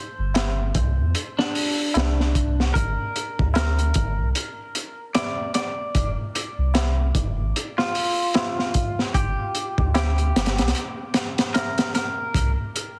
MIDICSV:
0, 0, Header, 1, 5, 480
1, 0, Start_track
1, 0, Key_signature, -2, "minor"
1, 0, Tempo, 800000
1, 1646, Time_signature, 4, 2, 24, 8
1, 7794, End_track
2, 0, Start_track
2, 0, Title_t, "Clean electric guitar"
2, 0, Program_c, 0, 27
2, 831, Note_on_c, 0, 62, 89
2, 1569, Note_off_c, 0, 62, 0
2, 1643, Note_on_c, 0, 70, 89
2, 2085, Note_off_c, 0, 70, 0
2, 2136, Note_on_c, 0, 70, 85
2, 2571, Note_off_c, 0, 70, 0
2, 3089, Note_on_c, 0, 74, 79
2, 3307, Note_off_c, 0, 74, 0
2, 3329, Note_on_c, 0, 74, 91
2, 3666, Note_off_c, 0, 74, 0
2, 4668, Note_on_c, 0, 65, 94
2, 5407, Note_off_c, 0, 65, 0
2, 5488, Note_on_c, 0, 67, 90
2, 5927, Note_off_c, 0, 67, 0
2, 5973, Note_on_c, 0, 67, 87
2, 6409, Note_off_c, 0, 67, 0
2, 6926, Note_on_c, 0, 70, 84
2, 7146, Note_off_c, 0, 70, 0
2, 7169, Note_on_c, 0, 70, 92
2, 7506, Note_off_c, 0, 70, 0
2, 7794, End_track
3, 0, Start_track
3, 0, Title_t, "Sub bass"
3, 0, Program_c, 1, 38
3, 111, Note_on_c, 1, 31, 101
3, 429, Note_off_c, 1, 31, 0
3, 451, Note_on_c, 1, 36, 100
3, 591, Note_on_c, 1, 41, 89
3, 600, Note_off_c, 1, 36, 0
3, 677, Note_off_c, 1, 41, 0
3, 1172, Note_on_c, 1, 36, 91
3, 1630, Note_off_c, 1, 36, 0
3, 1656, Note_on_c, 1, 31, 98
3, 1774, Note_off_c, 1, 31, 0
3, 2038, Note_on_c, 1, 38, 96
3, 2353, Note_off_c, 1, 38, 0
3, 2377, Note_on_c, 1, 31, 99
3, 2508, Note_on_c, 1, 36, 82
3, 2517, Note_off_c, 1, 31, 0
3, 2595, Note_off_c, 1, 36, 0
3, 3572, Note_on_c, 1, 29, 101
3, 3692, Note_off_c, 1, 29, 0
3, 3948, Note_on_c, 1, 36, 98
3, 4268, Note_off_c, 1, 36, 0
3, 4290, Note_on_c, 1, 29, 94
3, 4428, Note_on_c, 1, 33, 91
3, 4437, Note_off_c, 1, 29, 0
3, 4515, Note_off_c, 1, 33, 0
3, 5489, Note_on_c, 1, 31, 102
3, 5611, Note_off_c, 1, 31, 0
3, 5871, Note_on_c, 1, 38, 96
3, 6189, Note_off_c, 1, 38, 0
3, 6215, Note_on_c, 1, 31, 104
3, 6352, Note_on_c, 1, 36, 89
3, 6361, Note_off_c, 1, 31, 0
3, 6437, Note_off_c, 1, 36, 0
3, 7410, Note_on_c, 1, 36, 97
3, 7531, Note_off_c, 1, 36, 0
3, 7794, End_track
4, 0, Start_track
4, 0, Title_t, "Tabla"
4, 206, Note_on_c, 9, 60, 73
4, 266, Note_off_c, 9, 60, 0
4, 1165, Note_on_c, 9, 60, 73
4, 1225, Note_off_c, 9, 60, 0
4, 2123, Note_on_c, 9, 60, 75
4, 2183, Note_off_c, 9, 60, 0
4, 3091, Note_on_c, 9, 60, 79
4, 3151, Note_off_c, 9, 60, 0
4, 4043, Note_on_c, 9, 60, 73
4, 4103, Note_off_c, 9, 60, 0
4, 5009, Note_on_c, 9, 60, 71
4, 5069, Note_off_c, 9, 60, 0
4, 5966, Note_on_c, 9, 60, 74
4, 6026, Note_off_c, 9, 60, 0
4, 6928, Note_on_c, 9, 60, 69
4, 6988, Note_off_c, 9, 60, 0
4, 7794, End_track
5, 0, Start_track
5, 0, Title_t, "Drums"
5, 210, Note_on_c, 9, 42, 77
5, 215, Note_on_c, 9, 38, 100
5, 270, Note_off_c, 9, 42, 0
5, 275, Note_off_c, 9, 38, 0
5, 447, Note_on_c, 9, 42, 63
5, 450, Note_on_c, 9, 36, 104
5, 507, Note_off_c, 9, 42, 0
5, 510, Note_off_c, 9, 36, 0
5, 688, Note_on_c, 9, 42, 73
5, 748, Note_off_c, 9, 42, 0
5, 835, Note_on_c, 9, 38, 51
5, 895, Note_off_c, 9, 38, 0
5, 931, Note_on_c, 9, 46, 76
5, 991, Note_off_c, 9, 46, 0
5, 1169, Note_on_c, 9, 42, 82
5, 1183, Note_on_c, 9, 38, 108
5, 1229, Note_off_c, 9, 42, 0
5, 1243, Note_off_c, 9, 38, 0
5, 1322, Note_on_c, 9, 38, 34
5, 1382, Note_off_c, 9, 38, 0
5, 1411, Note_on_c, 9, 36, 81
5, 1414, Note_on_c, 9, 42, 68
5, 1471, Note_off_c, 9, 36, 0
5, 1474, Note_off_c, 9, 42, 0
5, 1560, Note_on_c, 9, 38, 42
5, 1620, Note_off_c, 9, 38, 0
5, 1653, Note_on_c, 9, 36, 96
5, 1655, Note_on_c, 9, 42, 78
5, 1713, Note_off_c, 9, 36, 0
5, 1715, Note_off_c, 9, 42, 0
5, 1894, Note_on_c, 9, 42, 55
5, 1954, Note_off_c, 9, 42, 0
5, 2036, Note_on_c, 9, 36, 88
5, 2096, Note_off_c, 9, 36, 0
5, 2131, Note_on_c, 9, 42, 79
5, 2136, Note_on_c, 9, 38, 99
5, 2191, Note_off_c, 9, 42, 0
5, 2196, Note_off_c, 9, 38, 0
5, 2272, Note_on_c, 9, 42, 40
5, 2332, Note_off_c, 9, 42, 0
5, 2364, Note_on_c, 9, 42, 62
5, 2373, Note_on_c, 9, 36, 97
5, 2424, Note_off_c, 9, 42, 0
5, 2433, Note_off_c, 9, 36, 0
5, 2611, Note_on_c, 9, 42, 84
5, 2671, Note_off_c, 9, 42, 0
5, 2850, Note_on_c, 9, 42, 67
5, 2910, Note_off_c, 9, 42, 0
5, 3087, Note_on_c, 9, 42, 91
5, 3091, Note_on_c, 9, 38, 105
5, 3147, Note_off_c, 9, 42, 0
5, 3151, Note_off_c, 9, 38, 0
5, 3325, Note_on_c, 9, 42, 69
5, 3331, Note_on_c, 9, 38, 42
5, 3385, Note_off_c, 9, 42, 0
5, 3391, Note_off_c, 9, 38, 0
5, 3568, Note_on_c, 9, 42, 85
5, 3569, Note_on_c, 9, 36, 103
5, 3628, Note_off_c, 9, 42, 0
5, 3629, Note_off_c, 9, 36, 0
5, 3812, Note_on_c, 9, 42, 71
5, 3872, Note_off_c, 9, 42, 0
5, 4048, Note_on_c, 9, 42, 77
5, 4050, Note_on_c, 9, 38, 98
5, 4108, Note_off_c, 9, 42, 0
5, 4110, Note_off_c, 9, 38, 0
5, 4289, Note_on_c, 9, 36, 95
5, 4289, Note_on_c, 9, 42, 62
5, 4349, Note_off_c, 9, 36, 0
5, 4349, Note_off_c, 9, 42, 0
5, 4536, Note_on_c, 9, 42, 81
5, 4596, Note_off_c, 9, 42, 0
5, 4673, Note_on_c, 9, 38, 44
5, 4733, Note_off_c, 9, 38, 0
5, 4768, Note_on_c, 9, 46, 70
5, 4828, Note_off_c, 9, 46, 0
5, 5005, Note_on_c, 9, 42, 90
5, 5012, Note_on_c, 9, 38, 108
5, 5065, Note_off_c, 9, 42, 0
5, 5072, Note_off_c, 9, 38, 0
5, 5155, Note_on_c, 9, 38, 34
5, 5215, Note_off_c, 9, 38, 0
5, 5245, Note_on_c, 9, 42, 64
5, 5249, Note_on_c, 9, 36, 90
5, 5305, Note_off_c, 9, 42, 0
5, 5309, Note_off_c, 9, 36, 0
5, 5395, Note_on_c, 9, 38, 39
5, 5455, Note_off_c, 9, 38, 0
5, 5486, Note_on_c, 9, 36, 98
5, 5487, Note_on_c, 9, 42, 79
5, 5546, Note_off_c, 9, 36, 0
5, 5547, Note_off_c, 9, 42, 0
5, 5728, Note_on_c, 9, 42, 59
5, 5788, Note_off_c, 9, 42, 0
5, 5868, Note_on_c, 9, 36, 86
5, 5928, Note_off_c, 9, 36, 0
5, 5969, Note_on_c, 9, 42, 79
5, 5972, Note_on_c, 9, 38, 116
5, 6029, Note_off_c, 9, 42, 0
5, 6032, Note_off_c, 9, 38, 0
5, 6108, Note_on_c, 9, 42, 38
5, 6168, Note_off_c, 9, 42, 0
5, 6217, Note_on_c, 9, 42, 65
5, 6218, Note_on_c, 9, 38, 91
5, 6276, Note_off_c, 9, 42, 0
5, 6276, Note_on_c, 9, 42, 58
5, 6278, Note_off_c, 9, 38, 0
5, 6282, Note_on_c, 9, 38, 80
5, 6336, Note_off_c, 9, 42, 0
5, 6342, Note_off_c, 9, 38, 0
5, 6349, Note_on_c, 9, 42, 57
5, 6355, Note_on_c, 9, 38, 79
5, 6407, Note_off_c, 9, 42, 0
5, 6407, Note_on_c, 9, 42, 61
5, 6408, Note_off_c, 9, 38, 0
5, 6408, Note_on_c, 9, 38, 76
5, 6448, Note_off_c, 9, 42, 0
5, 6448, Note_on_c, 9, 42, 78
5, 6468, Note_off_c, 9, 38, 0
5, 6508, Note_off_c, 9, 42, 0
5, 6683, Note_on_c, 9, 42, 74
5, 6686, Note_on_c, 9, 38, 87
5, 6743, Note_off_c, 9, 42, 0
5, 6746, Note_off_c, 9, 38, 0
5, 6829, Note_on_c, 9, 42, 75
5, 6833, Note_on_c, 9, 38, 98
5, 6889, Note_off_c, 9, 42, 0
5, 6893, Note_off_c, 9, 38, 0
5, 6927, Note_on_c, 9, 42, 74
5, 6933, Note_on_c, 9, 38, 103
5, 6987, Note_off_c, 9, 42, 0
5, 6993, Note_off_c, 9, 38, 0
5, 7067, Note_on_c, 9, 42, 76
5, 7073, Note_on_c, 9, 38, 104
5, 7127, Note_off_c, 9, 42, 0
5, 7133, Note_off_c, 9, 38, 0
5, 7168, Note_on_c, 9, 42, 67
5, 7173, Note_on_c, 9, 38, 52
5, 7228, Note_off_c, 9, 42, 0
5, 7233, Note_off_c, 9, 38, 0
5, 7407, Note_on_c, 9, 36, 105
5, 7412, Note_on_c, 9, 42, 89
5, 7467, Note_off_c, 9, 36, 0
5, 7472, Note_off_c, 9, 42, 0
5, 7654, Note_on_c, 9, 42, 59
5, 7714, Note_off_c, 9, 42, 0
5, 7794, End_track
0, 0, End_of_file